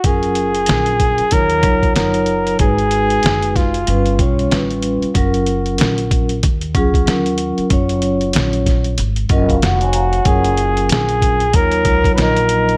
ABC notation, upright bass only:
X:1
M:4/4
L:1/16
Q:"Swing 16ths" 1/4=94
K:F#
V:1 name="Upright bass" clef=bass
F,,,4 A,,,3 z D,,2 C,,2 F,,,4 | G,,,4 F,,,4 =G,,,2 B,,,2 =A,,,3 z | F,,,4 A,,,4 D,,2 C,,2 D,,3 z | F,,,4 A,,,4 G,,,2 F,,,2 E,,,4 |
F,,,4 A,,,4 D,,2 C,,2 A,,,4 |]